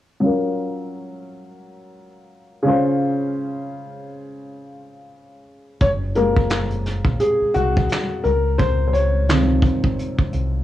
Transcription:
0.20 2.61 F#3 medium
0.20 2.62 C#4 medium
0.20 2.63 F4 medium
0.26 2.64 A#4 medium
2.63 5.40 C#3 medium
2.63 5.41 C#4 medium
2.63 5.42 F4 medium
2.68 5.42 C5 medium
5.80 7.03 F#1 medium
5.80 5.89 C#5 loud
5.80 kick loud
5.80 closed hi-hat medium
6.15 6.64 F3 medium
6.15 6.65 G#3 soft
6.15 6.65 A#3 medium
6.15 7.16 A#4 medium
6.15 closed hi-hat medium
6.37 kick medium
6.50 snare loud
6.50 clap medium
6.50 closed hi-hat medium
6.71 closed hi-hat soft
6.86 snare soft
6.86 closed hi-hat medium
7.05 7.18 A#1 medium
7.05 kick medium
7.20 7.56 G#4 medium
7.20 closed hi-hat medium
7.42 muted fingered electric bass stroke soft
7.54 7.87 C2 medium
7.54 8.26 F#4 loud
7.54 closed hi-hat medium
7.77 kick loud
7.89 snare medium
7.89 clap medium
7.89 closed hi-hat medium
8.24 9.69 C#2 medium
8.24 8.57 A#4 medium
8.24 closed hi-hat medium
8.58 8.86 C5 loud
8.58 kick loud
8.58 closed hi-hat medium
8.87 8.94 C5 medium
8.93 10.64 C#5 medium
8.93 closed hi-hat medium
9.28 9.79 C3 medium
9.28 9.78 D#3 medium
9.28 9.78 F3 medium
9.28 snare loud
9.28 clap medium
9.28 closed hi-hat medium
9.62 kick medium
9.62 closed hi-hat medium
9.84 9.97 G#1 medium
9.84 kick medium
9.99 closed hi-hat medium
10.18 muted fingered electric bass stroke soft
10.18 kick medium
10.33 10.64 C2 medium
10.33 closed hi-hat medium

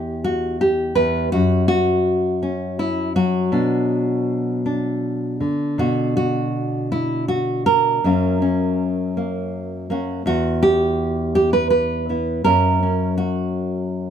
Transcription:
0.00 0.95 E2 medium
0.00 0.24 G4 medium
0.24 0.60 F#4 medium
0.61 1.32 G4 medium
0.95 1.32 E2 medium
0.95 1.32 B4 medium
1.32 3.48 F#2 medium
1.32 1.67 F#4 medium
1.68 2.78 F#4 medium
2.43 3.48 C#4 soft
2.79 3.15 E4 medium
3.16 5.40 F#3 medium
3.16 5.78 F#4 medium
3.52 5.41 B2 medium
3.52 4.65 D4 soft
4.66 5.74 D4 soft
5.40 8.03 D3 soft
5.78 7.99 B2 medium
5.78 6.16 F#4 medium
6.17 6.91 F#4 medium
6.92 7.28 E4 medium
7.28 7.66 F#4 medium
7.66 9.89 A#4 medium
8.04 10.21 F#2 medium
8.04 10.21 F#3 soft
8.04 9.16 A#3 soft
8.04 8.41 C#4 soft
8.42 9.89 C#4 soft
9.17 9.89 A#3 soft
9.90 10.21 A#3 soft
9.90 10.22 C#4 soft
9.90 10.22 F#4 soft
10.26 12.45 E2 medium
10.26 11.35 F#4 medium
10.63 11.34 G4 medium
11.35 11.53 G4 medium
11.53 11.69 B4 medium
11.70 12.44 B4 medium
12.09 12.41 B3 soft
12.09 12.41 E4 soft
12.44 14.10 F#2 medium
12.44 14.10 F#3 soft
12.44 14.10 A#3 soft
12.44 12.81 C#4 soft
12.44 13.17 A#4 medium
12.83 14.10 C#4 soft
13.18 14.10 F#4 medium

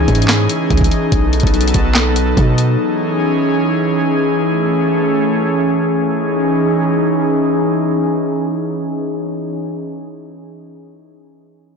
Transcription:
0.00 1.10 E3 medium
0.00 1.10 C#4 medium
0.00 4.41 D#4 medium
0.00 1.10 G#4 medium
0.08 0.48 G#2 loud
0.08 kick medium
0.08 closed hi-hat soft
0.15 closed hi-hat medium
0.22 closed hi-hat medium
0.28 snare loud
0.28 clap medium
0.28 closed hi-hat medium
0.49 closed hi-hat medium
0.70 0.90 C#2 loud
0.70 kick medium
0.70 closed hi-hat soft
0.77 kick loud
0.77 closed hi-hat medium
0.84 closed hi-hat medium
0.91 closed hi-hat medium
1.12 1.42 B1 loud
1.12 2.77 F#3 medium
1.12 2.77 B3 medium
1.12 2.77 A4 medium
1.12 kick loud
1.12 closed hi-hat loud
1.33 closed hi-hat soft
1.40 1.73 B1 loud
1.40 kick loud
1.40 closed hi-hat medium
1.47 closed hi-hat medium
1.54 closed hi-hat medium
1.61 closed hi-hat medium
1.68 closed hi-hat medium
1.74 2.35 B1 loud
1.74 kick medium
1.74 closed hi-hat medium
1.95 snare loud
1.95 clap medium
1.95 closed hi-hat medium
2.16 closed hi-hat medium
2.37 2.77 B2 loud
2.37 kick loud
2.37 closed hi-hat medium
2.58 closed hi-hat medium
2.79 6.09 E3 medium
2.79 4.44 C#4 medium
2.79 6.09 G#4 medium
4.45 6.10 A3 medium
4.45 6.10 C#4 medium
6.12 9.55 E3 medium
6.12 9.55 C#4 medium
6.12 9.55 D#4 medium
6.12 9.55 G#4 medium

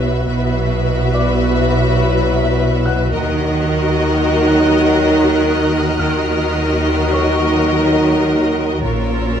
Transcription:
0.00 0.24 B1 medium
0.00 0.27 B1 medium
0.00 0.24 B2 medium
0.00 0.11 F#3 medium
0.00 0.11 E4 medium
0.00 0.25 F#4 soft
0.00 0.24 B4 medium
0.00 0.24 E5 medium
0.28 3.17 B1 medium
0.28 3.10 B1 medium
0.28 3.10 B2 medium
0.28 3.10 F#3 medium
0.28 3.10 E4 medium
0.28 3.10 F#4 medium
0.28 3.10 B4 medium
0.28 3.09 E5 medium
1.13 2.81 D5 soft
1.13 2.81 D6 soft
2.85 4.53 F#5 soft
2.85 4.53 F#6 soft
3.13 5.96 D#2 medium
3.13 5.99 D#2 medium
3.13 5.96 D#3 medium
3.13 5.95 F#3 medium
3.13 5.95 D#4 medium
3.13 5.96 F#4 medium
3.13 5.95 A#4 medium
3.13 5.96 D#5 medium
3.13 8.52 D#6 soft
3.13 7.38 F#6 soft
3.71 8.53 F6 soft
5.99 8.81 D#2 medium
5.99 8.87 D#2 medium
5.99 8.81 D#3 medium
5.99 8.68 F#3 medium
5.99 8.68 D#4 medium
5.99 8.81 F#4 medium
5.99 8.81 A#4 medium
5.99 8.81 D#5 medium
5.99 7.67 F6 medium
7.13 8.81 C#5 soft
7.13 8.81 C#6 soft
8.85 9.40 A#1 medium
8.85 9.40 A#2 medium
8.85 9.40 F3 medium
8.85 9.40 C#4 medium
8.85 9.40 F4 medium
8.85 9.40 A#4 medium
8.85 9.40 C#5 medium
8.85 9.40 A#5 soft
8.85 9.40 E6 soft

